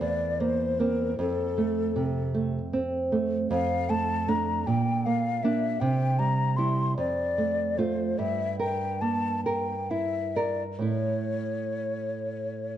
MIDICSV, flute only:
0, 0, Header, 1, 2, 480
1, 0, Start_track
1, 0, Tempo, 777202
1, 734, Time_signature, 6, 3, 24, 8
1, 3124, Tempo, 754717
1, 4084, Tempo, 809717
1, 5044, Tempo, 834492
1, 5524, Tempo, 892857
1, 6004, Tempo, 934579
1, 6484, Tempo, 985222
1, 6964, Tempo, 920245
1, 7455, End_track
2, 0, Start_track
2, 0, Title_t, "Flute"
2, 0, Program_c, 0, 73
2, 6, Note_on_c, 0, 74, 63
2, 248, Note_on_c, 0, 72, 57
2, 258, Note_off_c, 0, 74, 0
2, 491, Note_on_c, 0, 70, 66
2, 500, Note_off_c, 0, 72, 0
2, 732, Note_off_c, 0, 70, 0
2, 736, Note_on_c, 0, 69, 69
2, 1433, Note_off_c, 0, 69, 0
2, 2163, Note_on_c, 0, 77, 78
2, 2406, Note_on_c, 0, 81, 85
2, 2415, Note_off_c, 0, 77, 0
2, 2648, Note_on_c, 0, 82, 71
2, 2657, Note_off_c, 0, 81, 0
2, 2882, Note_on_c, 0, 79, 75
2, 2892, Note_off_c, 0, 82, 0
2, 3123, Note_on_c, 0, 77, 63
2, 3133, Note_off_c, 0, 79, 0
2, 3362, Note_on_c, 0, 76, 71
2, 3371, Note_off_c, 0, 77, 0
2, 3597, Note_on_c, 0, 79, 76
2, 3607, Note_off_c, 0, 76, 0
2, 3843, Note_on_c, 0, 82, 77
2, 3852, Note_off_c, 0, 79, 0
2, 4083, Note_on_c, 0, 84, 65
2, 4092, Note_off_c, 0, 82, 0
2, 4320, Note_off_c, 0, 84, 0
2, 4326, Note_on_c, 0, 74, 72
2, 4800, Note_on_c, 0, 72, 62
2, 4809, Note_off_c, 0, 74, 0
2, 5042, Note_on_c, 0, 76, 75
2, 5051, Note_off_c, 0, 72, 0
2, 5275, Note_off_c, 0, 76, 0
2, 5279, Note_on_c, 0, 79, 77
2, 5519, Note_on_c, 0, 81, 69
2, 5527, Note_off_c, 0, 79, 0
2, 5750, Note_off_c, 0, 81, 0
2, 5753, Note_on_c, 0, 79, 59
2, 6000, Note_on_c, 0, 76, 68
2, 6007, Note_off_c, 0, 79, 0
2, 6234, Note_on_c, 0, 74, 59
2, 6242, Note_off_c, 0, 76, 0
2, 6370, Note_off_c, 0, 74, 0
2, 6482, Note_on_c, 0, 73, 67
2, 7455, Note_off_c, 0, 73, 0
2, 7455, End_track
0, 0, End_of_file